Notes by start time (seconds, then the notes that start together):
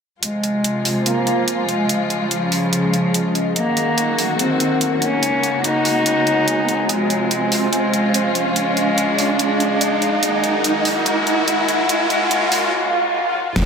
0.23 C3 F3 G#3 F4, closed hi-hat, riser
0.32 C5
0.37 G#5
0.44 closed hi-hat
0.53 F5
0.64 closed hi-hat
0.85 open hi-hat
1.06 A#3, closed hi-hat
1.27 closed hi-hat
1.48 closed hi-hat
1.68 G#3, closed hi-hat
1.89 C#3 G#3 C#4, closed hi-hat
1.96 G#4
2.10 closed hi-hat
2.31 F3, closed hi-hat
2.42 D#5
2.52 open hi-hat
2.73 closed hi-hat
2.94 closed hi-hat
3.14 closed hi-hat
3.35 closed hi-hat
3.56 D#3 F#3 A#3 D#4 F#4, closed hi-hat
3.77 A#4, closed hi-hat
3.98 closed hi-hat
4.18 open hi-hat
4.28 F#5
4.39 C4, closed hi-hat
4.60 closed hi-hat
4.81 closed hi-hat
5.02 C#4, closed hi-hat
5.23 C#3 G#3 F#4, closed hi-hat
5.41 C#5 G#5 A#5, closed hi-hat
5.64 D#4, closed hi-hat
5.85 open hi-hat
6.06 closed hi-hat
6.27 closed hi-hat
6.48 closed hi-hat
6.68 closed hi-hat
6.89 C3 F3 G#3 F4, closed hi-hat
7.10 closed hi-hat
7.15 C5
7.31 F5, closed hi-hat
7.52 open hi-hat
7.73 G#3, closed hi-hat
7.94 closed hi-hat
8.14 closed hi-hat
8.35 closed hi-hat
8.56 C#3 G#3 C#4 G#4, closed hi-hat
8.77 D#5, closed hi-hat
8.98 closed hi-hat
9.19 open hi-hat
9.39 G#3, closed hi-hat
9.60 closed hi-hat
9.81 closed hi-hat
10.02 closed hi-hat
10.23 D#3 F#3 G#3 A#3 D#4 F#4, closed hi-hat
10.30 A#4
10.44 closed hi-hat
10.64 G#3, closed hi-hat
10.85 open hi-hat
10.96 F#5
11.06 G#3, closed hi-hat
11.27 closed hi-hat
11.48 G#3, closed hi-hat
11.68 closed hi-hat
11.89 C#3 G#3 A#3 F#4, closed hi-hat
12.10 G#3, closed hi-hat
12.31 G#3, closed hi-hat
12.52 G#3, open hi-hat
12.73 swell
13.56 F1 C3 F3 G#3 F4, finger snap, kick, closed hi-hat, crash, impact